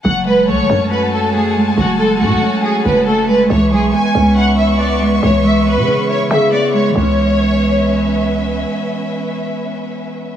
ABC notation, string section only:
X:1
M:4/4
L:1/8
Q:1/4=139
K:C#m
V:1 name="String section"
[fga]8- | [fga]8 | [Bec']8- | [Bec']8 |
[CBe]8- | [CBe]8 |]